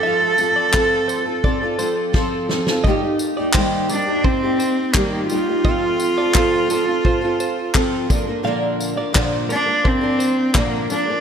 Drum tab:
TB |--x---x---x-----|--x---x---x---x-|--x---x---x---x-|--x---x---x---x-|
CP |----x-----------|----x-------x---|----x-------x---|----x-------x---|
SD |------------o-oo|----------------|----------------|----------------|
BD |----o---o---o---|o---o---o---o---|o---o---o---o-o-|----o---o---o---|